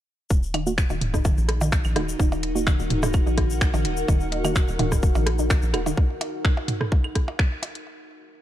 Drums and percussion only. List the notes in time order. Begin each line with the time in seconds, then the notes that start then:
0.30 kick, shaker
0.43 shaker
0.54 closed hi-hat, claves, percussion blips
0.67 shaker
0.78 finger snap, kick, shaker
0.90 percussion blips, shaker
1.01 closed hi-hat, mid tom
1.14 kick, cross-stick, mid tom, shaker
1.25 kick, percussion blips, shaker
1.38 shaker
1.49 cross-stick, closed hi-hat
1.61 percussion blips, shaker
1.72 finger snap, kick, shaker
1.84 claves, shaker
1.96 cross-stick, closed hi-hat, percussion blips
2.09 shaker
2.19 kick, shaker
2.32 percussion blips, shaker
2.43 closed hi-hat
2.56 shaker
2.67 finger snap, kick, percussion blips, shaker
2.80 shaker
2.90 closed hi-hat, mid tom
3.03 cross-stick, mid tom, percussion blips, shaker
3.13 kick, claves, shaker
3.27 shaker
3.38 kick, cross-stick, closed hi-hat, percussion blips
3.50 shaker
3.61 finger snap, kick, shaker
3.74 percussion blips, shaker
3.85 closed hi-hat
3.97 shaker
4.08 kick, percussion blips, shaker
4.20 shaker
4.32 closed hi-hat
4.45 claves, percussion blips, shaker
4.55 finger snap, kick, shaker
4.68 shaker
4.79 closed hi-hat, mid tom, percussion blips
4.92 kick, cross-stick, mid tom, shaker
5.03 kick, shaker
5.15 percussion blips, shaker
5.26 cross-stick, closed hi-hat
5.39 shaker
5.50 finger snap, kick, percussion blips, shaker
5.62 shaker
5.74 cross-stick, closed hi-hat, claves
5.86 percussion blips, shaker
5.97 kick
6.21 closed hi-hat, percussion blips
6.45 finger snap, kick
6.57 percussion blips
6.68 closed hi-hat, mid tom
6.81 cross-stick, mid tom
6.92 kick, percussion blips
7.04 claves
7.15 kick, cross-stick, closed hi-hat
7.28 percussion blips
7.39 finger snap, kick
7.63 closed hi-hat, percussion blips
7.75 closed hi-hat